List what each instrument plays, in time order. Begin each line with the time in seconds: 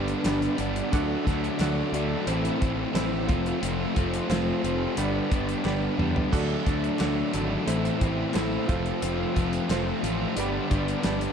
Already playing: fingered electric bass G1, overdriven electric guitar G2 D3 G3 B3 D4, tonewheel organ D4 G4 B4 D5, upright piano G4 B4 D5
0.08 closed hi-hat
0.23 fingered electric bass G1, overdriven electric guitar G2 D3 G3 B3 D4, upright piano G4 B4 D5, snare, clap, closed hi-hat
0.42 closed hi-hat
0.57 fingered electric bass G1, overdriven electric guitar G2 D3 G3 B3 D4, closed hi-hat
0.76 closed hi-hat
0.91 fingered electric bass D2, overdriven electric guitar D3 F#3 A3 D4, tonewheel organ D4 F#4 A4 D5, upright piano F#4 A4 D5, kick, closed hi-hat
1.24 fingered electric bass D2, overdriven electric guitar D3 F#3 A3 D4, kick, snare, closed hi-hat
1.44 closed hi-hat
1.59 fingered electric bass D2, overdriven electric guitar D3 F#3 A3 D4, upright piano F#4 A4 D5, snare, clap, closed hi-hat
1.92 fingered electric bass D2, overdriven electric guitar D3 F#3 A3 D4, closed hi-hat
2.26 fingered electric bass A1, overdriven electric guitar A2 E3 A3 C4 E4, tonewheel organ C4 E4 A4 C5, upright piano E4 A4 C5, closed hi-hat
2.45 closed hi-hat
2.61 fingered electric bass A1, overdriven electric guitar A2 E3 A3 C4 E4, kick, closed hi-hat
2.94 fingered electric bass A1, overdriven electric guitar A2 E3 A3 C4 E4, upright piano E4 A4 C5, snare, clap, closed hi-hat
3.27 fingered electric bass F1, overdriven electric guitar F3 A3 C4 F4, tonewheel organ C4 F4 A4 C5, upright piano F4 A4 C5, kick, closed hi-hat
3.46 closed hi-hat
3.60 fingered electric bass F1, overdriven electric guitar F3 A3 C4 F4, closed hi-hat
3.96 fingered electric bass F1, overdriven electric guitar F3 A3 C4 F4, kick, closed hi-hat
4.14 closed hi-hat
4.29 fingered electric bass F1, overdriven electric guitar F3 A3 C4 F4, upright piano F4 A4 C5, snare, clap, closed hi-hat
4.63 fingered electric bass F1, overdriven electric guitar F3 A3 C4 F4, closed hi-hat
4.96 fingered electric bass G1, overdriven electric guitar G2 D3 G3 B3 D4, tonewheel organ D4 G4 B4 D5, upright piano G4 B4 D5, closed hi-hat
5.30 fingered electric bass G1, overdriven electric guitar G2 D3 G3 B3 D4, kick, closed hi-hat
5.49 closed hi-hat
5.63 fingered electric bass G1, overdriven electric guitar G2 D3 G3 B3 D4, upright piano G4 B4 D5, snare, clap
5.97 fingered electric bass E2, overdriven electric guitar G2 D3 G3 B3 D4, mid tom
6.16 floor tom
6.30 fingered electric bass D2, overdriven electric guitar D3 F#3 A3 D4, tonewheel organ D4 F#4 A4 D5, upright piano F#4 A4 D5, kick, closed hi-hat, crash
6.64 fingered electric bass D2, overdriven electric guitar D3 F#3 A3 D4, kick, snare, closed hi-hat
6.84 closed hi-hat
6.97 fingered electric bass D2, overdriven electric guitar D3 F#3 A3 D4, upright piano F#4 A4 D5, clap, closed hi-hat
7.01 snare
7.31 fingered electric bass G#1, overdriven electric guitar D3 F#3 A3 D4, closed hi-hat
7.65 fingered electric bass A1, overdriven electric guitar A2 E3 A3 C4 E4, tonewheel organ C4 E4 A4 C5, upright piano E4 A4 C5, closed hi-hat
7.85 closed hi-hat
7.99 fingered electric bass A1, overdriven electric guitar A2 E3 A3 C4 E4, kick, closed hi-hat
8.04 overdriven electric guitar E4
8.33 fingered electric bass A1, overdriven electric guitar A2 E3 A3 C4 E4, upright piano E4 A4 C5, snare, clap, closed hi-hat
8.37 overdriven electric guitar C4
8.66 fingered electric bass F1, overdriven electric guitar F3 A3 C4 F4, tonewheel organ C4 F4 A4 C5, upright piano F4 A4 C5, kick, closed hi-hat
8.86 closed hi-hat
9.02 fingered electric bass F1, overdriven electric guitar F3 A3 C4 F4, closed hi-hat
9.34 fingered electric bass F1, overdriven electric guitar F3 A3 C4 F4, kick, snare, closed hi-hat
9.53 closed hi-hat
9.69 fingered electric bass F1, overdriven electric guitar F3 A3 C4 F4, upright piano F4 A4 C5, snare, clap, closed hi-hat
10.02 fingered electric bass A1, overdriven electric guitar F3 A3 C4 F4, closed hi-hat
10.34 fingered electric bass G1, overdriven electric guitar G2 D3 G3 B3 D4, tonewheel organ D4 G4 B4 D5, closed hi-hat
10.39 upright piano G4 B4 D5
10.70 fingered electric bass G1, overdriven electric guitar G2 D3 G3 B3 D4, kick, closed hi-hat
10.88 closed hi-hat
11.03 fingered electric bass G1, overdriven electric guitar G2 D3 G3 B3 D4, upright piano G4 B4 D5, snare, clap, closed hi-hat
11.21 closed hi-hat